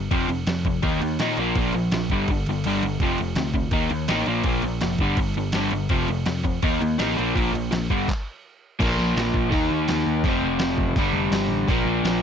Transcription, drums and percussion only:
0.11 kick, crash
0.29 crash
0.47 snare, crash
0.65 kick, crash
0.83 kick, crash
1.02 crash
1.19 snare, crash
1.37 crash
1.55 kick, crash
1.73 crash
1.91 snare, crash
2.10 kick, crash
2.28 kick, crash
2.46 crash
2.64 crash
2.83 crash
3.00 kick, crash
3.18 crash
3.35 snare, crash
3.54 kick, crash
3.71 kick, crash
3.90 crash
4.08 snare, crash
4.26 crash
4.43 kick, crash
4.62 crash
4.81 snare, crash
4.98 kick, crash
5.17 kick, crash
5.34 crash
5.52 snare, crash
5.71 crash
5.89 kick, crash
6.08 crash
6.26 snare, crash
6.45 kick, crash
6.62 kick, crash
6.82 crash
6.99 snare, crash
7.19 crash
7.36 kick, crash
7.55 crash
7.72 snare, crash
7.90 kick, crash
8.08 kick, clap
8.80 kick, open hi-hat, crash
9.17 snare, open hi-hat
9.34 kick
9.52 kick, open hi-hat
9.88 snare, open hi-hat
10.24 kick, open hi-hat
10.59 snare, open hi-hat
10.78 kick
10.96 kick, open hi-hat
11.32 snare, open hi-hat
11.68 kick, open hi-hat
12.05 snare, open hi-hat

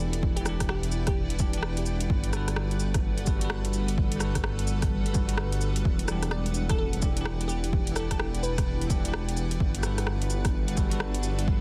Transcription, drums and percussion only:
0.13 closed hi-hat
0.23 kick
0.37 closed hi-hat
0.46 cross-stick, cabasa
0.60 kick, cross-stick, closed hi-hat
0.69 cross-stick
0.83 closed hi-hat
0.92 cabasa
1.07 kick, cross-stick, closed hi-hat
1.30 closed hi-hat
1.39 kick, cabasa
1.53 closed hi-hat
1.63 cross-stick
1.77 closed hi-hat
1.86 cabasa
2.00 closed hi-hat
2.10 kick
2.24 closed hi-hat
2.33 cross-stick, cabasa
2.48 cross-stick, closed hi-hat
2.56 cross-stick
2.71 closed hi-hat
2.80 cabasa
2.94 kick, cross-stick, closed hi-hat
3.18 closed hi-hat
3.26 kick, cabasa
3.41 closed hi-hat
3.50 cross-stick
3.65 closed hi-hat
3.73 cabasa
3.88 closed hi-hat
3.98 kick
4.12 closed hi-hat
4.20 cross-stick, cabasa
4.35 kick, cross-stick, closed hi-hat
4.44 cross-stick
4.59 closed hi-hat
4.67 cabasa
4.82 kick, cross-stick, closed hi-hat
5.06 closed hi-hat
5.14 kick, cabasa
5.29 closed hi-hat
5.37 cross-stick
5.52 closed hi-hat
5.61 cabasa
5.76 closed hi-hat
5.85 kick
5.99 closed hi-hat
6.08 cross-stick, cabasa
6.23 cross-stick, closed hi-hat
6.31 cross-stick
6.46 closed hi-hat
6.54 cabasa
6.69 kick, cross-stick, closed hi-hat
6.93 closed hi-hat
7.02 kick, cabasa
7.17 closed hi-hat
7.25 cross-stick
7.41 closed hi-hat
7.49 cabasa
7.64 closed hi-hat
7.73 kick
7.87 closed hi-hat
7.96 cross-stick, cabasa
8.11 kick, cross-stick, closed hi-hat
8.20 cross-stick
8.35 closed hi-hat
8.44 cabasa
8.58 kick, cross-stick, closed hi-hat
8.81 closed hi-hat
8.90 kick, cabasa
9.05 closed hi-hat
9.14 cross-stick
9.29 closed hi-hat
9.37 cabasa
9.51 closed hi-hat
9.60 kick
9.75 closed hi-hat
9.83 cross-stick, cabasa
9.98 cross-stick, closed hi-hat
10.07 cross-stick
10.22 closed hi-hat
10.30 cabasa
10.45 kick, cross-stick, closed hi-hat
10.68 closed hi-hat
10.77 kick, cabasa
10.91 closed hi-hat
11.00 cross-stick
11.14 closed hi-hat
11.23 cabasa
11.39 closed hi-hat
11.48 kick

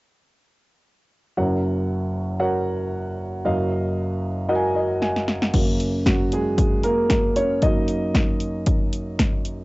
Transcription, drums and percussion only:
5.02 snare
5.16 snare
5.28 snare
5.42 snare
5.54 kick, closed hi-hat, crash
5.80 closed hi-hat
6.06 kick, snare, closed hi-hat
6.32 closed hi-hat
6.58 kick, closed hi-hat
6.83 closed hi-hat
7.10 kick, snare, closed hi-hat
7.36 closed hi-hat
7.62 kick, closed hi-hat
7.88 closed hi-hat
8.15 kick, snare, closed hi-hat
8.40 closed hi-hat
8.66 kick, closed hi-hat
8.93 closed hi-hat
9.19 kick, snare, closed hi-hat
9.45 closed hi-hat

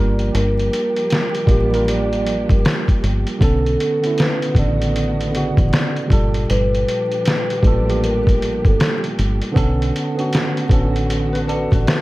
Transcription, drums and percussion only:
0.19 closed hi-hat
0.35 closed hi-hat
0.59 closed hi-hat
0.73 closed hi-hat
0.96 closed hi-hat
1.10 snare, closed hi-hat
1.35 closed hi-hat
1.47 kick, closed hi-hat
1.74 closed hi-hat
1.88 closed hi-hat
2.13 closed hi-hat
2.26 closed hi-hat
2.49 kick, closed hi-hat
2.65 snare, closed hi-hat
2.88 kick, closed hi-hat
3.04 closed hi-hat
3.27 closed hi-hat
3.41 kick, closed hi-hat
3.66 closed hi-hat
3.80 closed hi-hat
4.04 closed hi-hat
4.18 snare, closed hi-hat
4.42 closed hi-hat
4.55 kick, closed hi-hat
4.82 closed hi-hat
4.96 closed hi-hat
5.21 closed hi-hat
5.35 closed hi-hat
5.57 kick, closed hi-hat
5.73 snare, closed hi-hat
5.96 closed hi-hat
6.10 kick, closed hi-hat
6.34 closed hi-hat
6.50 closed hi-hat
6.75 closed hi-hat
6.89 closed hi-hat
7.12 closed hi-hat
7.25 snare, closed hi-hat
7.50 closed hi-hat
7.63 kick, closed hi-hat
7.90 closed hi-hat
8.04 closed hi-hat
8.27 kick, closed hi-hat
8.42 closed hi-hat
8.65 kick, closed hi-hat
8.80 snare, closed hi-hat
9.04 closed hi-hat
9.19 closed hi-hat
9.42 closed hi-hat
9.56 kick, closed hi-hat
9.82 closed hi-hat
9.96 closed hi-hat
10.19 closed hi-hat
10.33 snare, closed hi-hat
10.57 closed hi-hat
10.69 kick, closed hi-hat
10.96 closed hi-hat
11.10 closed hi-hat
11.35 closed hi-hat
11.49 closed hi-hat
11.72 kick, closed hi-hat
11.87 snare, closed hi-hat

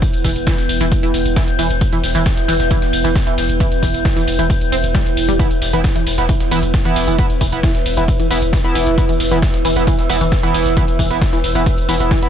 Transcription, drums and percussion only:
0.02 kick, closed hi-hat, ride, tambourine
0.14 ride, tambourine
0.24 kick, closed hi-hat, open hi-hat, ride, tambourine
0.36 closed hi-hat, ride, tambourine
0.47 kick, snare, closed hi-hat, ride, tambourine
0.58 snare, ride, tambourine
0.69 closed hi-hat, open hi-hat, ride, tambourine
0.81 closed hi-hat, ride, tambourine
0.92 kick, closed hi-hat, ride, tambourine
1.03 ride, tambourine
1.14 closed hi-hat, open hi-hat, ride, tambourine
1.25 closed hi-hat, ride, tambourine
1.36 kick, snare, closed hi-hat, ride, tambourine
1.48 closed hi-hat, ride, tambourine
1.59 closed hi-hat, open hi-hat, ride, tambourine
1.70 closed hi-hat, ride, tambourine
1.81 kick, closed hi-hat, ride, tambourine
1.93 ride, tambourine
2.04 snare, closed hi-hat, open hi-hat, ride, tambourine
2.15 closed hi-hat, ride, tambourine
2.26 kick, snare, closed hi-hat, ride, tambourine
2.37 snare, ride, tambourine
2.48 closed hi-hat, open hi-hat, ride, tambourine
2.60 snare, closed hi-hat, ride, tambourine
2.71 kick, closed hi-hat, ride, tambourine
2.82 snare, ride, tambourine
2.93 closed hi-hat, open hi-hat, ride, tambourine
3.05 closed hi-hat, ride, tambourine
3.16 kick, snare, closed hi-hat, ride, tambourine
3.27 closed hi-hat, ride, tambourine
3.38 snare, closed hi-hat, open hi-hat, ride, tambourine
3.49 closed hi-hat, ride, tambourine
3.60 kick, closed hi-hat, ride, tambourine
3.72 ride, tambourine
3.83 kick, closed hi-hat, open hi-hat, ride, tambourine
3.94 closed hi-hat, ride, tambourine
4.05 kick, snare, closed hi-hat, ride, tambourine
4.17 snare, ride, tambourine
4.28 closed hi-hat, open hi-hat, ride, tambourine
4.39 closed hi-hat, ride, tambourine
4.50 kick, closed hi-hat, ride, tambourine
4.61 ride, tambourine
4.72 closed hi-hat, open hi-hat, ride, tambourine
4.84 closed hi-hat, ride, tambourine
4.95 kick, snare, closed hi-hat, ride, tambourine
5.06 closed hi-hat, ride, tambourine
5.17 closed hi-hat, open hi-hat, ride, tambourine
5.29 closed hi-hat, ride, tambourine
5.39 kick, closed hi-hat, ride, tambourine
5.51 ride, tambourine
5.62 snare, closed hi-hat, open hi-hat, ride, tambourine
5.73 closed hi-hat, ride, tambourine
5.84 kick, snare, closed hi-hat, ride, tambourine
5.96 snare, ride, tambourine
6.07 closed hi-hat, open hi-hat, ride, tambourine
6.18 snare, closed hi-hat, ride, tambourine
6.29 kick, closed hi-hat, ride, tambourine
6.40 snare, ride, tambourine
6.51 closed hi-hat, open hi-hat, ride, tambourine
6.63 closed hi-hat, ride, tambourine
6.74 kick, snare, closed hi-hat, ride, tambourine
6.85 closed hi-hat, ride, tambourine
6.96 snare, closed hi-hat, open hi-hat, ride, tambourine
7.08 closed hi-hat, ride, tambourine
7.19 kick, closed hi-hat, ride, tambourine
7.30 ride, tambourine
7.41 kick, closed hi-hat, open hi-hat, ride, tambourine
7.52 closed hi-hat, ride, tambourine
7.63 kick, snare, closed hi-hat, ride, tambourine
7.75 snare, ride, tambourine
7.86 closed hi-hat, open hi-hat, ride, tambourine
7.97 closed hi-hat, ride, tambourine
8.08 kick, closed hi-hat, ride, tambourine
8.20 ride, tambourine
8.31 closed hi-hat, open hi-hat, ride, tambourine
8.42 closed hi-hat, ride, tambourine
8.53 kick, snare, closed hi-hat, ride, tambourine
8.64 closed hi-hat, ride, tambourine
8.75 closed hi-hat, open hi-hat, ride, tambourine
8.87 closed hi-hat, ride, tambourine
8.98 kick, closed hi-hat, ride, tambourine
9.09 ride, tambourine
9.20 snare, closed hi-hat, open hi-hat, ride, tambourine
9.31 closed hi-hat, ride, tambourine
9.42 kick, snare, closed hi-hat, ride, tambourine
9.54 snare, ride, tambourine
9.65 closed hi-hat, open hi-hat, ride, tambourine
9.76 snare, closed hi-hat, ride, tambourine
9.87 kick, closed hi-hat, ride, tambourine
9.99 snare, ride, tambourine
10.10 closed hi-hat, open hi-hat, ride, tambourine
10.21 closed hi-hat, ride, tambourine
10.32 kick, snare, closed hi-hat, ride, tambourine
10.43 closed hi-hat, ride, tambourine
10.54 snare, closed hi-hat, open hi-hat, ride, tambourine
10.66 closed hi-hat, ride, tambourine
10.77 kick, closed hi-hat, ride, tambourine
10.88 ride, tambourine
10.99 kick, closed hi-hat, open hi-hat, ride, tambourine
11.11 closed hi-hat, ride, tambourine
11.21 kick, snare, closed hi-hat, ride, tambourine
11.33 snare, ride, tambourine
11.44 closed hi-hat, open hi-hat, ride, tambourine
11.55 closed hi-hat, ride, tambourine
11.66 kick, closed hi-hat, ride, tambourine
11.78 ride, tambourine
11.89 closed hi-hat, open hi-hat, ride, tambourine
12.00 closed hi-hat, ride, tambourine
12.11 kick, snare, closed hi-hat, ride, tambourine
12.23 closed hi-hat, ride, tambourine

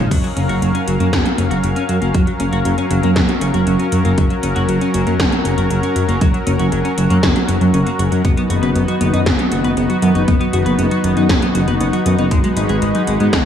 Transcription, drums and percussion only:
0.11 kick, closed hi-hat, crash
0.24 closed hi-hat
0.37 closed hi-hat
0.49 closed hi-hat
0.62 closed hi-hat
0.75 closed hi-hat
0.88 closed hi-hat
1.00 closed hi-hat
1.13 kick, snare, closed hi-hat
1.26 closed hi-hat
1.38 closed hi-hat
1.51 closed hi-hat
1.64 closed hi-hat
1.76 closed hi-hat
1.89 closed hi-hat
2.02 closed hi-hat
2.14 kick, closed hi-hat
2.27 closed hi-hat
2.40 closed hi-hat
2.53 closed hi-hat
2.65 closed hi-hat
2.78 closed hi-hat
2.91 closed hi-hat
3.03 closed hi-hat
3.16 kick, snare, closed hi-hat
3.29 closed hi-hat
3.41 closed hi-hat
3.54 closed hi-hat
3.67 closed hi-hat
3.79 closed hi-hat
3.92 closed hi-hat
4.05 closed hi-hat
4.18 kick, closed hi-hat
4.30 closed hi-hat
4.43 closed hi-hat
4.56 closed hi-hat
4.69 closed hi-hat
4.81 closed hi-hat
4.94 closed hi-hat
5.07 closed hi-hat
5.20 kick, snare, closed hi-hat
5.32 closed hi-hat
5.45 closed hi-hat
5.58 closed hi-hat
5.70 closed hi-hat
5.83 closed hi-hat
5.96 closed hi-hat
6.09 closed hi-hat
6.21 kick, closed hi-hat
6.34 closed hi-hat
6.47 closed hi-hat
6.59 closed hi-hat
6.72 closed hi-hat
6.85 closed hi-hat
6.98 closed hi-hat
7.10 closed hi-hat
7.23 kick, snare, closed hi-hat
7.36 closed hi-hat
7.49 closed hi-hat
7.61 closed hi-hat
7.74 closed hi-hat
7.87 closed hi-hat
7.99 closed hi-hat
8.12 closed hi-hat
8.25 kick, closed hi-hat
8.37 closed hi-hat
8.50 closed hi-hat
8.63 closed hi-hat
8.76 closed hi-hat
8.88 closed hi-hat
9.01 closed hi-hat
9.14 closed hi-hat
9.26 kick, snare, closed hi-hat
9.39 closed hi-hat
9.52 closed hi-hat
9.64 closed hi-hat
9.77 closed hi-hat
9.90 closed hi-hat
10.02 closed hi-hat
10.15 closed hi-hat
10.28 kick, closed hi-hat
10.41 closed hi-hat
10.53 closed hi-hat
10.66 closed hi-hat
10.79 closed hi-hat
10.91 closed hi-hat
11.04 closed hi-hat
11.17 closed hi-hat
11.29 kick, snare, closed hi-hat
11.42 closed hi-hat
11.55 closed hi-hat
11.68 closed hi-hat
11.80 closed hi-hat
11.93 closed hi-hat
12.06 closed hi-hat
12.19 closed hi-hat
12.31 kick, closed hi-hat
12.44 closed hi-hat
12.57 closed hi-hat
12.69 closed hi-hat
12.82 closed hi-hat
12.95 closed hi-hat
13.07 closed hi-hat
13.20 closed hi-hat
13.33 kick, snare, closed hi-hat

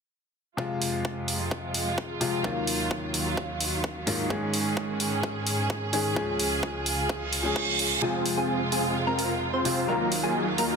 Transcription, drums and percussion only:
0.58 kick
0.82 open hi-hat
1.05 kick
1.28 open hi-hat
1.51 kick
1.74 open hi-hat
1.98 kick
2.21 open hi-hat
2.44 kick
2.67 open hi-hat
2.91 kick
3.14 open hi-hat
3.37 kick
3.60 open hi-hat
3.84 kick
4.07 open hi-hat
4.30 kick
4.54 open hi-hat
4.77 kick
5.00 open hi-hat
5.23 kick
5.47 open hi-hat
5.70 kick
5.93 open hi-hat
6.16 kick
6.40 open hi-hat
6.63 kick
6.86 open hi-hat
7.09 kick
7.33 open hi-hat
7.56 kick
7.79 open hi-hat
8.26 open hi-hat
8.72 open hi-hat
9.19 open hi-hat
9.65 open hi-hat
10.12 open hi-hat
10.58 open hi-hat

